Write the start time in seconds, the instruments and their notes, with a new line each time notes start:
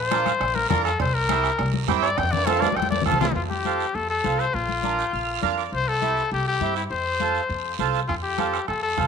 Already playing: upright bass A#1, trumpet C5
0.11 accordion D4 F4 A#4, bombo rim, high conga, short guiro
0.26 bombo rim, high conga, short guiro
0.40 upright bass A#1, bombo rim, cowbell, high conga, long guiro
0.55 trumpet A#4, high conga
0.69 upright bass F2, accordion D4 F4 A#4, trumpet A#4, bombo low, bombo rim, high conga, low conga, short guiro
0.84 trumpet A4, bombo rim, short guiro
1.00 upright bass C2, trumpet C5, bombo low, bombo rim, cowbell, high conga, long guiro
1.14 trumpet A#4
1.29 accordion C4 E4 G4, bombo rim, high conga, short guiro
1.44 bombo rim, short guiro
1.59 upright bass C2, bombo rim, cowbell, high conga, long guiro
1.74 high conga
1.88 upright bass G2, accordion C4 E4 G4, bombo low, bombo rim, high conga, short guiro
2.02 trumpet D5, bombo rim, short guiro
2.18 upright bass F2, trumpet G5, bombo low, bombo rim, cowbell, high conga, high timbale, long guiro
2.27 high timbale
2.32 trumpet D5, low conga
2.37 high timbale
2.46 accordion C4 F4 A4, trumpet A4, bombo rim, high conga, high timbale, short guiro
2.57 high timbale
2.61 trumpet D5, bombo rim, high conga, short guiro
2.67 low timbale
2.72 trumpet G5, high conga
2.76 upright bass F2, bombo rim, cowbell, long guiro
2.82 high conga, low timbale
2.91 trumpet D5, high conga
2.96 low timbale
3.02 low conga
3.06 upright bass C2, accordion C4 F4 A4, trumpet A4, bombo low, bombo rim, short guiro
3.12 low conga
3.16 low timbale
3.21 trumpet F4, bombo rim, low conga, short guiro
3.25 low timbale
3.31 upright bass F2, trumpet F4, low conga
3.36 long guiro
3.49 trumpet G4, high conga
3.65 accordion C4 F4 A4, high conga, short guiro
3.80 short guiro
3.95 upright bass F2, trumpet A4, long guiro
4.10 trumpet A4
4.24 upright bass C2, accordion C4 F4 A4, high conga, short guiro
4.39 trumpet C5, short guiro
4.54 upright bass A#1, trumpet F4, long guiro
4.69 high conga
4.83 accordion D4 F4 A#4, high conga, short guiro
4.98 accordion G5, short guiro
5.13 upright bass A#1, accordion F5, long guiro
5.42 upright bass F2, accordion D4 F4 A#4 F5, high conga, short guiro
5.58 accordion D5, short guiro
5.72 upright bass C2, trumpet C5, long guiro
5.88 trumpet A4
6.01 accordion C4 E4 G4, high conga, short guiro
6.17 short guiro
6.31 upright bass C2, trumpet G4, long guiro
6.47 trumpet G4
6.61 upright bass G2, accordion C4 E4 G4, high conga, short guiro
6.76 trumpet E4, short guiro
6.90 upright bass F2, trumpet C5, long guiro
7.20 accordion C4 F4 A4, high conga, short guiro
7.35 short guiro
7.49 upright bass F2, long guiro
7.79 upright bass C2, accordion C4 F4 A4, high conga, short guiro
7.95 short guiro
8.08 upright bass F2, trumpet F4, bombo low, bombo rim, long guiro
8.23 trumpet G4
8.38 accordion C4 F4 A4, bombo rim, high conga, short guiro
8.54 bombo rim, short guiro
8.68 upright bass F2, trumpet A4, bombo rim, long guiro
8.83 trumpet A4
8.97 upright bass C2, accordion C4 F4 A4, bombo low, bombo rim, high conga, short guiro